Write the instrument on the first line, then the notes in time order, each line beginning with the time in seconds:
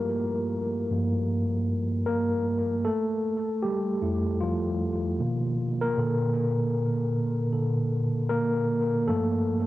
tine electric piano
Already playing: F3 A#3 E4 F4 A#4
0.91 G2 F3 A#3
2.06 A#3 A#4
2.85 A3 A4
3.63 G3 G4
4.02 F2 A3 E4
4.41 F3 F4
5.19 B2 D#3 A#3
5.81 A#3 A#4
5.97 A#2 D3 A4
7.52 A#2 D3 A4
8.29 A#3 A#4
9.08 G2 F3 A3 A#3 A4